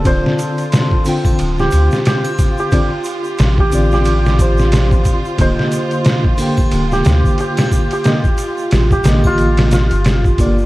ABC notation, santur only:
X:1
M:4/4
L:1/16
Q:"Swing 16ths" 1/4=90
K:Dphr
V:1 name="Santur"
c3 z6 G3 G3 G- | G3 z2 G2 G3 c4- c z | c3 z6 G3 G3 G- | G3 z2 G2 F3 F4- F z |]